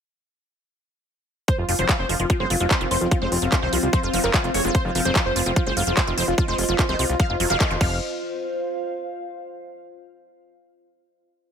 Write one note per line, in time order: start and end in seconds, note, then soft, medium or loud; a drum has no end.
1.48 7.81 F3 medium
1.48 7.81 C4 medium
1.48 7.80 F4 medium
1.48 1.55 C5 loud
1.48 kick loud
1.48 closed hi-hat medium
1.58 1.64 F1 medium
1.58 1.65 F4 medium
1.69 1.74 F1 loud
1.69 1.72 F3 medium
1.69 1.75 F4 medium
1.69 open hi-hat loud
1.79 1.85 F1 medium
1.79 1.88 F#3 medium
1.79 1.86 C5 medium
1.79 closed hi-hat medium
1.89 1.96 F4 medium
1.89 kick loud
1.89 clap loud
1.89 closed hi-hat medium
1.93 7.81 C5 medium
1.99 2.05 F1 medium
1.99 2.06 C5 loud
2.09 2.15 F1 loud
2.09 2.13 F3 medium
2.09 2.16 F4 medium
2.09 open hi-hat loud
2.20 2.25 F1 medium
2.20 2.26 F3 medium
2.20 2.26 F4 medium
2.20 closed hi-hat medium
2.26 2.33 F3 medium
2.26 2.37 F4 medium
2.26 5.60 F5 medium
2.26 kick loud
2.26 closed hi-hat medium
2.40 2.46 F#1 medium
2.40 2.49 G#3 medium
2.40 2.47 C5 loud
2.50 2.56 F1 loud
2.50 2.54 F#3 medium
2.50 2.57 F4 medium
2.50 open hi-hat loud
2.60 2.66 F1 medium
2.60 2.70 F#3 medium
2.60 2.67 F4 medium
2.60 closed hi-hat medium
2.71 2.77 C5 medium
2.71 kick loud
2.71 clap loud
2.71 closed hi-hat medium
2.81 2.87 F1 medium
2.81 2.87 D#3 medium
2.81 2.88 F4 medium
2.81 closed hi-hat soft
2.91 2.97 F1 loud
2.91 2.95 F3 medium
2.91 3.08 C4 medium
2.91 2.98 C5 loud
2.91 open hi-hat loud
3.01 3.07 F1 medium
3.01 3.08 F4 medium
3.01 closed hi-hat medium
3.11 3.15 F3 medium
3.11 3.18 F4 medium
3.11 kick loud
3.11 closed hi-hat medium
3.22 3.27 F1 medium
3.22 3.31 G#3 medium
3.22 3.39 C4 medium
3.22 3.28 C5 medium
3.32 3.38 F1 loud
3.32 3.39 F4 medium
3.32 open hi-hat loud
3.42 3.48 F1 loud
3.42 3.51 F#3 medium
3.42 3.49 F4 medium
3.42 closed hi-hat medium
3.52 3.59 F4 medium
3.52 kick loud
3.52 clap loud
3.52 closed hi-hat medium
3.62 3.68 C2 medium
3.62 3.69 D#3 medium
3.62 3.69 C5 medium
3.73 3.78 C2 loud
3.73 3.76 F3 medium
3.73 3.80 F4 medium
3.73 open hi-hat loud
3.83 3.89 C2 medium
3.83 3.90 F4 medium
3.83 closed hi-hat medium
3.93 3.97 F3 medium
3.93 4.00 C5 loud
3.93 kick loud
3.93 closed hi-hat medium
4.03 4.09 F1 medium
4.03 4.12 F4 medium
4.03 4.10 F4 medium
4.13 4.19 F1 loud
4.13 4.20 F3 medium
4.13 4.20 F4 medium
4.13 open hi-hat loud
4.24 4.29 F1 medium
4.24 4.30 G#3 medium
4.24 4.31 A#4 loud
4.24 clap soft
4.24 closed hi-hat medium
4.34 4.40 F3 medium
4.34 4.41 F4 medium
4.34 4.51 F4 loud
4.34 kick loud
4.34 clap loud
4.34 closed hi-hat medium
4.44 4.50 F1 medium
4.44 4.51 F4 medium
4.44 closed hi-hat soft
4.54 4.60 F1 loud
4.54 4.61 G#3 medium
4.54 4.61 C#5 medium
4.54 open hi-hat loud
4.64 4.70 F1 medium
4.64 4.68 G#3 loud
4.64 4.71 G#3 medium
4.64 4.71 F4 medium
4.64 closed hi-hat medium
4.75 4.82 C5 loud
4.75 kick loud
4.75 closed hi-hat medium
4.85 4.91 F1 medium
4.85 4.92 F4 medium
4.95 5.01 F1 loud
4.95 4.99 F3 medium
4.95 5.02 F4 medium
4.95 open hi-hat loud
5.05 5.11 F1 medium
5.05 5.14 F#3 medium
5.05 5.12 C5 medium
5.05 closed hi-hat medium
5.16 5.22 F4 medium
5.16 kick loud
5.16 clap loud
5.16 closed hi-hat medium
5.26 5.31 F1 medium
5.26 5.33 C5 loud
5.36 5.42 F1 loud
5.36 5.40 F3 medium
5.36 5.43 F4 medium
5.36 open hi-hat loud
5.46 5.52 F1 medium
5.46 5.52 F3 medium
5.46 5.53 F4 medium
5.46 7.81 D#5 medium
5.46 closed hi-hat medium
5.56 5.60 F3 medium
5.56 5.63 F4 medium
5.56 kick loud
5.56 closed hi-hat medium
5.67 5.72 F#1 medium
5.67 5.76 G#3 medium
5.67 5.73 C5 medium
5.77 5.82 F1 loud
5.77 5.80 F#3 medium
5.77 5.84 F4 medium
5.77 open hi-hat loud
5.87 5.93 F1 loud
5.87 5.96 F#3 medium
5.87 5.94 F4 medium
5.87 closed hi-hat medium
5.97 6.04 C5 medium
5.97 kick loud
5.97 clap loud
5.97 closed hi-hat medium
6.07 6.13 F1 medium
6.07 6.13 D#3 medium
6.07 6.14 F4 medium
6.07 closed hi-hat soft
6.18 6.23 F1 loud
6.18 6.21 F3 medium
6.18 6.35 C4 medium
6.18 6.24 C5 loud
6.18 open hi-hat loud
6.28 6.33 F1 medium
6.28 6.35 F4 medium
6.28 closed hi-hat medium
6.38 6.42 F3 medium
6.38 6.45 F4 medium
6.38 kick loud
6.38 closed hi-hat medium
6.48 6.54 F1 medium
6.48 6.57 G#3 medium
6.48 6.65 C4 medium
6.48 6.55 C5 loud
6.58 6.64 F1 loud
6.58 6.65 F4 medium
6.58 open hi-hat loud
6.69 6.74 F1 medium
6.69 6.78 F#3 medium
6.69 6.75 F4 medium
6.69 closed hi-hat medium
6.79 6.85 A#3 medium
6.79 6.86 F4 medium
6.79 kick loud
6.79 clap loud
6.79 closed hi-hat medium
6.89 6.95 C2 medium
6.89 6.95 D#3 medium
6.89 6.96 A#3 medium
6.89 6.96 C5 loud
6.89 closed hi-hat soft
6.99 7.05 C2 loud
6.99 7.03 F3 medium
6.99 7.06 F4 medium
6.99 open hi-hat loud
7.09 7.15 C2 medium
7.09 7.16 F4 medium
7.09 closed hi-hat medium
7.20 7.23 F3 medium
7.20 7.26 F5 loud
7.20 kick loud
7.20 closed hi-hat medium
7.30 7.36 F1 medium
7.30 7.39 F4 medium
7.30 7.37 F4 medium
7.40 7.46 F1 loud
7.40 7.46 F#3 medium
7.40 7.47 F4 medium
7.40 open hi-hat loud
7.50 7.56 F1 medium
7.50 7.56 F#3 loud
7.50 7.57 F5 loud
7.50 clap soft
7.50 closed hi-hat medium
7.60 7.67 F3 loud
7.60 7.67 A#3 medium
7.60 7.67 F4 medium
7.60 kick loud
7.60 clap loud
7.60 closed hi-hat medium
7.71 7.76 F1 medium
7.71 7.77 D#3 medium
7.71 7.77 A#3 medium
7.71 7.77 F4 medium
7.71 closed hi-hat soft
7.81 8.00 F1 loud
7.81 8.00 F3 medium
7.81 9.40 F4 medium
7.81 7.96 F5 loud
7.81 kick loud
7.81 crash medium
7.87 9.40 C5 medium
8.14 9.61 F5 medium